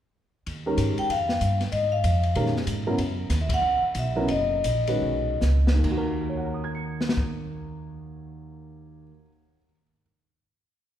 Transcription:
0.47 0.77 D#2 medium
0.47 ride soft
0.66 1.07 D#3 medium
0.66 1.07 G#3 medium
0.66 1.07 C#4 medium
0.66 1.07 G4 medium
0.66 1.08 A#4 medium
0.78 0.96 G#2 medium
0.78 hi-hat pedal soft
0.78 ride medium
0.98 1.09 G5 medium
0.98 muted upright bass stroke soft
0.98 ride soft
1.09 1.40 F2 medium
1.09 1.58 F5 medium
1.09 ride medium
1.29 snare soft
1.41 1.71 G2 medium
1.41 hi-hat pedal medium
1.41 ride medium
1.60 snare soft
1.60 ride soft
1.72 2.03 G#2 medium
1.72 1.92 D#5 medium
1.72 ride soft
1.92 2.51 F5 medium
2.04 2.34 F2 medium
2.04 hi-hat pedal medium
2.04 ride medium
2.23 ride soft
2.35 2.66 A#2 medium
2.35 2.53 D#3 medium
2.35 2.53 G#3 soft
2.35 2.53 C#4 soft
2.35 2.53 G4 soft
2.35 2.53 A#4 medium
2.35 ride medium
2.46 snare soft
2.56 snare soft
2.67 2.97 G#2 medium
2.67 hi-hat pedal medium
2.67 ride medium
2.87 2.97 C#3 medium
2.87 2.97 F#3 medium
2.87 2.97 B3 soft
2.87 2.97 E4 medium
2.87 2.97 A#4 medium
2.98 3.29 F#2 medium
2.98 ride medium
3.30 3.61 D#2 medium
3.30 snare soft
3.30 hi-hat pedal medium
3.30 ride medium
3.41 3.50 E5 medium
3.49 kick medium
3.49 ride medium
3.54 3.82 F#5 medium
3.61 3.81 C#2 medium
3.82 muted upright bass stroke soft
3.95 4.28 B1 medium
3.95 hi-hat pedal soft
3.95 ride medium
3.99 4.29 E5 medium
4.16 4.27 C#3 medium
4.16 4.27 F#3 medium
4.16 4.28 B3 medium
4.16 4.28 E4 medium
4.16 4.28 A#4 medium
4.28 4.63 F#1 medium
4.28 5.38 D#5 medium
4.28 ride medium
4.64 5.01 A#1 medium
4.64 hi-hat pedal medium
4.64 ride medium
4.87 5.38 D#3 soft
4.87 5.38 G#3 soft
4.87 5.39 C#4 soft
4.87 5.39 F#4 soft
4.87 5.39 B4 medium
4.87 ride medium
5.02 5.40 B1 medium
5.41 5.83 C#2 medium
5.41 snare soft
5.41 hi-hat pedal soft
5.67 snare medium
5.73 9.03 D#2 medium
5.79 9.09 D#3 medium
5.84 9.10 D#2 medium
5.84 9.16 A#3 soft
5.84 kick soft
5.84 crash medium
5.91 9.22 F#4 medium
5.98 9.28 A#4 medium
6.29 9.56 C#5 soft
6.37 9.64 F#5 soft
6.45 9.72 A#5 soft
6.54 9.81 D#6 soft
6.64 9.91 G#6 soft
6.75 10.01 C#7 soft
7.01 snare soft
7.09 snare medium
7.17 kick medium

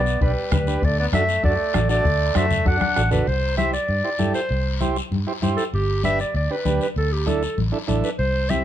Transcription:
0.00 0.15 B1 medium
0.00 0.20 B3 medium
0.00 0.20 D5 medium
0.06 short guiro medium
0.21 0.33 B1 loud
0.21 0.51 G3 medium
0.21 0.32 D4 medium
0.21 0.32 G4 medium
0.21 0.32 B4 medium
0.21 0.50 B4 medium
0.21 bombo low medium
0.21 high conga soft
0.21 long guiro medium
0.52 0.76 D2 loud
0.52 0.87 G3 medium
0.52 0.57 D4 medium
0.52 0.57 G4 medium
0.52 0.86 B4 medium
0.52 0.58 B4 medium
0.52 bombo low medium
0.52 bombo rim medium
0.52 high conga medium
0.52 low conga medium
0.52 short guiro medium
0.67 0.82 D4 medium
0.67 0.83 G4 medium
0.67 0.83 B4 medium
0.67 short guiro medium
0.82 1.07 D2 loud
0.82 0.99 A3 medium
0.82 0.99 D5 medium
0.82 bombo low medium
0.82 high conga soft
0.82 long guiro medium
1.00 1.06 B3 medium
1.00 1.06 D5 medium
1.12 1.37 F#2 medium
1.12 1.43 A3 medium
1.12 1.24 D4 medium
1.12 1.24 F#4 medium
1.12 1.24 A4 medium
1.12 1.42 E5 loud
1.12 bombo rim medium
1.12 high conga medium
1.12 short guiro medium
1.29 short guiro medium
1.44 1.56 F#2 loud
1.44 1.88 A3 medium
1.44 1.54 D4 medium
1.44 1.54 F#4 medium
1.44 1.55 A4 medium
1.44 1.87 D5 medium
1.44 bombo low medium
1.44 high conga soft
1.44 long guiro medium
1.74 1.99 A1 loud
1.74 1.79 D4 medium
1.74 1.80 F#4 medium
1.74 1.80 A4 medium
1.74 bombo rim medium
1.74 high conga medium
1.74 short guiro medium
1.89 2.37 A3 medium
1.89 2.05 D4 medium
1.89 2.05 F#4 medium
1.89 2.06 A4 medium
1.89 2.39 D5 loud
1.89 short guiro medium
2.04 2.29 D2 loud
2.04 bombo low medium
2.04 high conga soft
2.04 long guiro medium
2.35 2.60 F#2 medium
2.35 2.67 A3 medium
2.35 2.46 D4 medium
2.35 2.46 F#4 medium
2.35 2.46 C5 medium
2.35 2.67 E5 loud
2.35 bombo rim medium
2.35 high conga medium
2.35 short guiro medium
2.51 low conga medium
2.51 short guiro medium
2.65 2.78 F#2 loud
2.65 2.77 D4 medium
2.65 3.10 D4 medium
2.65 2.77 F#4 medium
2.65 2.77 A4 medium
2.65 3.10 F#5 loud
2.65 bombo low medium
2.65 high conga soft
2.65 long guiro medium
2.81 bombo rim medium
2.81 high conga medium
2.96 3.22 A1 medium
2.96 3.02 D4 medium
2.96 3.02 F#4 medium
2.96 3.02 A4 medium
2.96 bombo rim medium
2.96 short guiro medium
3.11 3.27 D4 medium
3.11 3.27 F#4 medium
3.11 3.27 A4 medium
3.11 3.29 B4 medium
3.11 low conga medium
3.11 short guiro medium
3.27 3.77 C2 medium
3.27 3.57 C5 medium
3.27 long guiro medium
3.57 3.74 E4 medium
3.57 3.74 G4 medium
3.57 3.74 C5 medium
3.57 3.72 E5 loud
3.57 high conga medium
3.57 short guiro medium
3.73 4.31 D5 medium
3.73 short guiro medium
3.88 4.01 G2 medium
3.88 long guiro medium
4.04 4.10 E4 medium
4.04 4.10 G4 medium
4.04 4.10 C5 medium
4.19 4.32 G2 medium
4.19 4.41 E4 medium
4.19 4.41 G4 medium
4.19 4.41 A4 medium
4.19 high conga medium
4.19 short guiro medium
4.34 4.92 C5 medium
4.34 short guiro medium
4.49 5.00 C2 loud
4.49 long guiro medium
4.81 4.97 E4 medium
4.81 4.97 G4 medium
4.81 4.97 C5 medium
4.81 high conga medium
4.81 short guiro medium
4.96 short guiro medium
5.12 5.24 G2 medium
5.12 high conga medium
5.12 long guiro medium
5.27 5.33 E4 medium
5.27 5.33 G4 medium
5.27 5.33 C5 medium
5.42 5.55 G2 medium
5.42 5.64 E4 medium
5.42 5.64 G4 medium
5.42 5.65 C5 medium
5.42 high conga medium
5.42 short guiro medium
5.57 5.64 A4 medium
5.57 short guiro medium
5.73 6.23 G1 loud
5.73 6.02 G4 medium
5.73 long guiro medium
6.04 6.20 D4 medium
6.04 6.20 G4 medium
6.04 6.21 B4 medium
6.04 6.19 E5 loud
6.04 high conga medium
6.04 short guiro medium
6.19 6.34 D5 medium
6.19 short guiro medium
6.34 6.47 D2 medium
6.34 6.53 D5 medium
6.34 long guiro medium
6.50 6.56 D4 medium
6.50 6.56 G4 medium
6.50 6.56 B4 medium
6.50 6.82 B4 medium
6.65 6.78 D2 medium
6.65 6.87 D4 medium
6.65 6.87 G4 medium
6.65 6.87 B4 medium
6.65 high conga medium
6.65 short guiro medium
6.81 6.89 B4 medium
6.81 short guiro medium
6.96 7.45 D2 medium
6.96 7.14 A4 medium
6.96 long guiro medium
7.12 7.29 G4 medium
7.26 7.43 D4 medium
7.26 7.43 E4 medium
7.26 7.43 A4 medium
7.26 7.58 A4 medium
7.26 high conga medium
7.26 short guiro medium
7.43 short guiro medium
7.58 7.70 A1 medium
7.58 high conga medium
7.58 long guiro medium
7.72 7.78 D4 medium
7.72 7.78 E4 medium
7.72 7.78 A4 medium
7.88 8.01 A1 medium
7.88 8.10 D4 medium
7.88 8.10 E4 medium
7.88 8.10 A4 medium
7.88 high conga medium
7.88 short guiro medium
8.04 8.11 B4 medium
8.04 short guiro medium
8.18 8.64 C2 loud
8.18 8.51 C5 medium
8.18 long guiro medium
8.49 8.64 C4 medium
8.49 8.64 E4 medium
8.49 8.64 G4 medium
8.49 8.64 E5 loud
8.49 high conga medium
8.49 short guiro medium

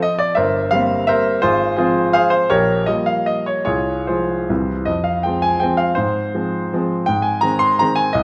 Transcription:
0.00 0.33 F3 soft
0.00 0.19 D#5 medium
0.19 0.36 D5 medium
0.35 0.71 G1 medium
0.35 0.69 A#4 medium
0.35 0.69 C5 medium
0.35 0.71 E5 medium
0.71 1.39 G3 soft
0.71 1.39 A#3 soft
0.71 1.39 C4 medium
0.71 1.08 F5 medium
1.07 1.40 A#4 medium
1.07 1.40 C5 medium
1.07 1.42 E5 medium
1.42 1.77 G#1 medium
1.42 1.75 F4 medium
1.42 1.75 G#4 medium
1.42 1.77 C5 medium
1.77 2.46 F3 soft
1.77 2.46 G#3 soft
1.77 2.12 C4 medium
1.77 2.12 F4 medium
1.77 2.13 G#4 medium
2.13 2.31 G#4 medium
2.13 2.29 C5 medium
2.13 2.32 F5 medium
2.30 2.48 C5 medium
2.50 2.86 A#1 medium
2.50 2.85 G4 medium
2.50 2.84 A#4 medium
2.50 2.87 C#5 medium
2.86 3.63 F3 soft
2.86 3.63 G3 soft
2.86 3.63 A#3 soft
2.86 3.07 D#5 medium
3.06 3.27 F5 medium
3.26 3.46 D#5 medium
3.46 3.63 C#5 medium
3.65 4.07 C2 soft
3.65 4.05 F4 soft
3.65 4.05 G#4 medium
3.65 4.07 C#5 medium
4.07 4.46 F3 soft
4.07 4.46 G#3 soft
4.07 4.65 F4 soft
4.07 4.66 G#4 soft
4.07 4.69 C5 soft
4.49 4.86 C2 soft
4.49 4.84 E3 soft
4.49 4.84 G3 soft
4.49 4.84 C4 soft
4.85 5.23 F2 soft
4.85 5.05 D#5 medium
5.04 5.24 F5 medium
5.23 5.59 F3 soft
5.23 5.59 G#3 soft
5.23 5.59 C4 soft
5.23 5.43 G5 medium
5.42 5.61 G#5 medium
5.60 5.94 F3 soft
5.60 5.94 G#3 soft
5.60 5.94 C4 soft
5.60 5.79 G5 medium
5.77 5.96 F5 medium
5.95 6.33 G#2 soft
5.95 7.07 C5 medium
6.35 6.69 F3 soft
6.35 6.69 G#3 soft
6.35 6.69 C4 soft
6.74 7.05 F3 soft
6.74 7.05 G#3 soft
6.74 7.06 C4 soft
7.06 7.43 G#2 medium
7.06 7.24 G5 medium
7.22 7.42 G#5 medium
7.41 7.76 D#3 soft
7.41 7.76 G#3 soft
7.41 7.76 C4 soft
7.41 7.61 A#5 medium
7.59 7.78 C6 medium
7.79 8.10 D#3 medium
7.79 8.11 G#3 medium
7.79 8.11 C4 medium
7.79 7.97 A#5 medium
7.96 8.12 G#5 medium
8.13 8.23 C2 medium
8.13 8.23 D#5 medium

